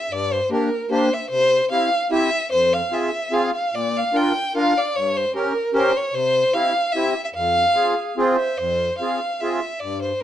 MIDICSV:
0, 0, Header, 1, 4, 480
1, 0, Start_track
1, 0, Key_signature, -4, "minor"
1, 0, Tempo, 401875
1, 136, Time_signature, 3, 2, 24, 8
1, 7816, Tempo, 408998
1, 12146, End_track
2, 0, Start_track
2, 0, Title_t, "Violin"
2, 0, Program_c, 0, 40
2, 0, Note_on_c, 0, 76, 83
2, 141, Note_on_c, 0, 74, 98
2, 159, Note_off_c, 0, 76, 0
2, 392, Note_on_c, 0, 72, 88
2, 410, Note_off_c, 0, 74, 0
2, 619, Note_off_c, 0, 72, 0
2, 628, Note_on_c, 0, 70, 84
2, 1064, Note_off_c, 0, 70, 0
2, 1093, Note_on_c, 0, 72, 87
2, 1353, Note_on_c, 0, 76, 82
2, 1371, Note_off_c, 0, 72, 0
2, 1545, Note_off_c, 0, 76, 0
2, 1552, Note_on_c, 0, 72, 114
2, 1999, Note_off_c, 0, 72, 0
2, 2045, Note_on_c, 0, 77, 101
2, 2489, Note_off_c, 0, 77, 0
2, 2541, Note_on_c, 0, 76, 106
2, 2978, Note_off_c, 0, 76, 0
2, 3010, Note_on_c, 0, 72, 107
2, 3264, Note_on_c, 0, 77, 91
2, 3282, Note_off_c, 0, 72, 0
2, 3500, Note_on_c, 0, 76, 86
2, 3518, Note_off_c, 0, 77, 0
2, 3988, Note_on_c, 0, 77, 92
2, 4005, Note_off_c, 0, 76, 0
2, 4228, Note_off_c, 0, 77, 0
2, 4235, Note_on_c, 0, 77, 86
2, 4475, Note_on_c, 0, 74, 99
2, 4493, Note_off_c, 0, 77, 0
2, 4738, Note_on_c, 0, 77, 91
2, 4756, Note_off_c, 0, 74, 0
2, 4974, Note_on_c, 0, 79, 89
2, 4992, Note_off_c, 0, 77, 0
2, 5445, Note_off_c, 0, 79, 0
2, 5457, Note_on_c, 0, 77, 99
2, 5705, Note_on_c, 0, 74, 93
2, 5723, Note_off_c, 0, 77, 0
2, 5918, Note_on_c, 0, 73, 100
2, 5936, Note_off_c, 0, 74, 0
2, 6172, Note_on_c, 0, 72, 92
2, 6190, Note_off_c, 0, 73, 0
2, 6390, Note_off_c, 0, 72, 0
2, 6397, Note_on_c, 0, 70, 86
2, 6834, Note_off_c, 0, 70, 0
2, 6884, Note_on_c, 0, 72, 97
2, 7129, Note_on_c, 0, 73, 88
2, 7147, Note_off_c, 0, 72, 0
2, 7334, Note_on_c, 0, 72, 109
2, 7352, Note_off_c, 0, 73, 0
2, 7802, Note_on_c, 0, 77, 103
2, 7820, Note_off_c, 0, 72, 0
2, 8255, Note_on_c, 0, 76, 99
2, 8273, Note_off_c, 0, 77, 0
2, 8633, Note_off_c, 0, 76, 0
2, 8638, Note_on_c, 0, 76, 69
2, 8693, Note_off_c, 0, 76, 0
2, 8751, Note_on_c, 0, 77, 110
2, 9672, Note_off_c, 0, 77, 0
2, 9957, Note_on_c, 0, 76, 77
2, 10202, Note_on_c, 0, 72, 89
2, 10220, Note_off_c, 0, 76, 0
2, 10667, Note_off_c, 0, 72, 0
2, 10674, Note_on_c, 0, 77, 82
2, 11170, Note_on_c, 0, 76, 82
2, 11188, Note_off_c, 0, 77, 0
2, 11635, Note_on_c, 0, 74, 89
2, 11653, Note_off_c, 0, 76, 0
2, 11887, Note_off_c, 0, 74, 0
2, 11894, Note_on_c, 0, 72, 76
2, 12140, Note_off_c, 0, 72, 0
2, 12146, End_track
3, 0, Start_track
3, 0, Title_t, "Clarinet"
3, 0, Program_c, 1, 71
3, 9247, Note_on_c, 1, 68, 74
3, 9695, Note_off_c, 1, 68, 0
3, 9765, Note_on_c, 1, 72, 88
3, 10200, Note_off_c, 1, 72, 0
3, 12146, End_track
4, 0, Start_track
4, 0, Title_t, "Accordion"
4, 0, Program_c, 2, 21
4, 118, Note_on_c, 2, 43, 60
4, 485, Note_off_c, 2, 43, 0
4, 602, Note_on_c, 2, 58, 67
4, 606, Note_on_c, 2, 62, 59
4, 612, Note_on_c, 2, 67, 68
4, 827, Note_off_c, 2, 58, 0
4, 829, Note_off_c, 2, 62, 0
4, 832, Note_off_c, 2, 67, 0
4, 1076, Note_on_c, 2, 58, 73
4, 1080, Note_on_c, 2, 62, 74
4, 1082, Note_on_c, 2, 67, 85
4, 1301, Note_off_c, 2, 58, 0
4, 1304, Note_off_c, 2, 62, 0
4, 1305, Note_off_c, 2, 67, 0
4, 1568, Note_on_c, 2, 48, 63
4, 1920, Note_off_c, 2, 48, 0
4, 2042, Note_on_c, 2, 60, 66
4, 2047, Note_on_c, 2, 64, 58
4, 2051, Note_on_c, 2, 67, 71
4, 2262, Note_off_c, 2, 60, 0
4, 2265, Note_off_c, 2, 64, 0
4, 2267, Note_off_c, 2, 67, 0
4, 2516, Note_on_c, 2, 60, 69
4, 2522, Note_on_c, 2, 64, 66
4, 2523, Note_on_c, 2, 67, 85
4, 2739, Note_off_c, 2, 60, 0
4, 2742, Note_off_c, 2, 64, 0
4, 2742, Note_off_c, 2, 67, 0
4, 3000, Note_on_c, 2, 41, 55
4, 3361, Note_off_c, 2, 41, 0
4, 3474, Note_on_c, 2, 60, 57
4, 3477, Note_on_c, 2, 65, 52
4, 3488, Note_on_c, 2, 68, 60
4, 3701, Note_off_c, 2, 60, 0
4, 3703, Note_off_c, 2, 65, 0
4, 3708, Note_off_c, 2, 68, 0
4, 3955, Note_on_c, 2, 60, 69
4, 3966, Note_on_c, 2, 65, 60
4, 3967, Note_on_c, 2, 68, 76
4, 4186, Note_off_c, 2, 60, 0
4, 4192, Note_off_c, 2, 65, 0
4, 4193, Note_off_c, 2, 68, 0
4, 4449, Note_on_c, 2, 46, 61
4, 4819, Note_off_c, 2, 46, 0
4, 4935, Note_on_c, 2, 65, 50
4, 4936, Note_on_c, 2, 62, 67
4, 4943, Note_on_c, 2, 70, 71
4, 5164, Note_off_c, 2, 62, 0
4, 5164, Note_off_c, 2, 65, 0
4, 5168, Note_off_c, 2, 70, 0
4, 5432, Note_on_c, 2, 65, 61
4, 5434, Note_on_c, 2, 62, 66
4, 5435, Note_on_c, 2, 70, 72
4, 5654, Note_off_c, 2, 65, 0
4, 5655, Note_off_c, 2, 62, 0
4, 5655, Note_off_c, 2, 70, 0
4, 5918, Note_on_c, 2, 43, 58
4, 6272, Note_off_c, 2, 43, 0
4, 6381, Note_on_c, 2, 61, 67
4, 6390, Note_on_c, 2, 70, 64
4, 6391, Note_on_c, 2, 67, 51
4, 6604, Note_off_c, 2, 61, 0
4, 6608, Note_off_c, 2, 70, 0
4, 6609, Note_off_c, 2, 67, 0
4, 6853, Note_on_c, 2, 61, 72
4, 6853, Note_on_c, 2, 67, 75
4, 6860, Note_on_c, 2, 70, 85
4, 7076, Note_off_c, 2, 61, 0
4, 7076, Note_off_c, 2, 67, 0
4, 7079, Note_off_c, 2, 70, 0
4, 7330, Note_on_c, 2, 48, 59
4, 7692, Note_off_c, 2, 48, 0
4, 7813, Note_on_c, 2, 64, 52
4, 7816, Note_on_c, 2, 60, 60
4, 7819, Note_on_c, 2, 67, 62
4, 8033, Note_off_c, 2, 64, 0
4, 8035, Note_off_c, 2, 60, 0
4, 8036, Note_off_c, 2, 67, 0
4, 8297, Note_on_c, 2, 60, 63
4, 8301, Note_on_c, 2, 64, 66
4, 8302, Note_on_c, 2, 67, 74
4, 8513, Note_off_c, 2, 60, 0
4, 8515, Note_off_c, 2, 64, 0
4, 8516, Note_off_c, 2, 67, 0
4, 8755, Note_on_c, 2, 41, 58
4, 9117, Note_off_c, 2, 41, 0
4, 9226, Note_on_c, 2, 60, 65
4, 9236, Note_on_c, 2, 65, 54
4, 9240, Note_on_c, 2, 68, 63
4, 9456, Note_off_c, 2, 60, 0
4, 9461, Note_off_c, 2, 65, 0
4, 9463, Note_off_c, 2, 68, 0
4, 9729, Note_on_c, 2, 68, 86
4, 9730, Note_on_c, 2, 60, 82
4, 9733, Note_on_c, 2, 65, 69
4, 9953, Note_off_c, 2, 60, 0
4, 9953, Note_off_c, 2, 68, 0
4, 9955, Note_off_c, 2, 65, 0
4, 10219, Note_on_c, 2, 41, 57
4, 10580, Note_off_c, 2, 41, 0
4, 10709, Note_on_c, 2, 60, 50
4, 10711, Note_on_c, 2, 65, 52
4, 10717, Note_on_c, 2, 68, 58
4, 10927, Note_off_c, 2, 60, 0
4, 10928, Note_off_c, 2, 65, 0
4, 10931, Note_off_c, 2, 68, 0
4, 11187, Note_on_c, 2, 60, 70
4, 11192, Note_on_c, 2, 68, 71
4, 11193, Note_on_c, 2, 65, 62
4, 11405, Note_off_c, 2, 60, 0
4, 11407, Note_off_c, 2, 68, 0
4, 11408, Note_off_c, 2, 65, 0
4, 11660, Note_on_c, 2, 43, 56
4, 12016, Note_off_c, 2, 43, 0
4, 12146, End_track
0, 0, End_of_file